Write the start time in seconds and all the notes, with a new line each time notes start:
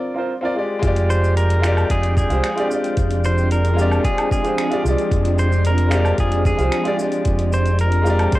Already playing: C4 F4 A#4 D5
0.14 C4 F4 A#4
0.18 C5
0.41 C4 F4 A#4 D5
0.55 G#3 F4 G4 D5
0.79 F1 F3 G#3 C4 D4 F4 G5, kick, closed hi-hat
0.83 G4 D5, shaker
0.96 closed hi-hat, shaker
1.10 C5, shaker
1.24 shaker
1.37 A#4, closed hi-hat, shaker
1.50 closed hi-hat, shaker
1.60 G#3 F4, finger snap
1.64 G4 D5, shaker
1.77 low woodblock, shaker
1.90 F1 G#4, kick, closed hi-hat, shaker
2.03 closed hi-hat, shaker
2.17 G#4, kick, shaker
2.29 C2 G#3 F4 G4 C5, closed hi-hat, shaker
2.44 finger snap, closed hi-hat, shaker
2.55 G#3 F4 G4, closed hi-hat, shaker
2.60 D5
2.66 G#3 F4
2.71 G4 D5, shaker
2.84 closed hi-hat, shaker
2.97 F1, kick, closed hi-hat, shaker
3.11 closed hi-hat, shaker
3.24 C5, shaker
3.38 shaker
3.51 A#4, closed hi-hat, shaker
3.65 closed hi-hat, shaker
3.74 G#3 F4
3.79 G4 D5, shaker
3.91 low woodblock, shaker
4.04 G#4, kick, closed hi-hat, shaker
4.18 closed hi-hat, low woodblock, shaker
4.31 G#4, kick, shaker
4.42 G#3 F4 G4 C5, closed hi-hat, shaker
4.58 finger snap, closed hi-hat, shaker
4.69 G#3 F4 G4 D5, closed hi-hat, shaker
4.81 G#3 F4
4.85 C2 G4 D5, shaker
4.98 closed hi-hat, shaker
5.11 F1, kick, closed hi-hat, shaker
5.25 closed hi-hat, shaker
5.38 C5, shaker
5.52 shaker
5.65 A#4, closed hi-hat, shaker
5.78 closed hi-hat, shaker
5.88 G#3 F4, finger snap, shaker
5.93 G4 D5
6.05 low woodblock, shaker
6.18 F1 G#4, kick, closed hi-hat, shaker
6.32 closed hi-hat, shaker
6.45 G#4, kick, shaker
6.57 C2 G#3 F4 G4 C5, closed hi-hat, shaker
6.72 finger snap, closed hi-hat, shaker
6.84 G#3 F4 G4 D5, closed hi-hat, shaker
6.95 G#3 F4
6.99 G4 D5, shaker
7.12 closed hi-hat, shaker
7.25 F1, kick, closed hi-hat, shaker
7.39 closed hi-hat, shaker
7.52 C5, shaker
7.65 closed hi-hat, shaker
7.79 A#4, closed hi-hat, shaker
7.92 closed hi-hat, shaker
8.02 G#3 F4
8.06 G4 D5, shaker
8.19 closed hi-hat, low woodblock, shaker
8.32 C5, kick, closed hi-hat, shaker